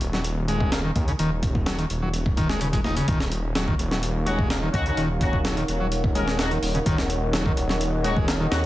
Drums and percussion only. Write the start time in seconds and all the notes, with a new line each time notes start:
0.01 closed hi-hat
0.13 snare
0.24 closed hi-hat
0.48 closed hi-hat
0.60 kick
0.72 snare, closed hi-hat
0.96 kick, closed hi-hat
1.08 closed hi-hat
1.19 closed hi-hat
1.43 kick, closed hi-hat
1.55 kick
1.66 snare, closed hi-hat
1.79 closed hi-hat
1.90 closed hi-hat
2.14 closed hi-hat
2.26 kick
2.37 kick, closed hi-hat
2.49 snare
2.61 closed hi-hat
2.73 kick, closed hi-hat
2.84 snare
2.97 closed hi-hat
3.08 kick, closed hi-hat
3.20 snare
3.32 closed hi-hat
3.55 snare, closed hi-hat
3.68 kick
3.79 closed hi-hat
3.91 snare
4.03 closed hi-hat
4.27 closed hi-hat
4.39 kick
4.50 snare, closed hi-hat
4.74 kick, closed hi-hat
4.86 closed hi-hat
4.97 closed hi-hat
5.21 kick, closed hi-hat
5.33 kick
5.45 snare, closed hi-hat
5.57 closed hi-hat
5.68 closed hi-hat
5.92 closed hi-hat
6.04 kick
6.15 closed hi-hat
6.28 snare
6.39 snare, closed hi-hat
6.51 closed hi-hat
6.63 open hi-hat
6.75 closed hi-hat
6.86 kick, closed hi-hat
6.98 snare
7.10 closed hi-hat
7.33 snare, closed hi-hat
7.46 kick
7.57 closed hi-hat
7.69 snare
7.81 closed hi-hat
8.04 closed hi-hat
8.17 kick
8.28 snare, closed hi-hat
8.52 snare, closed hi-hat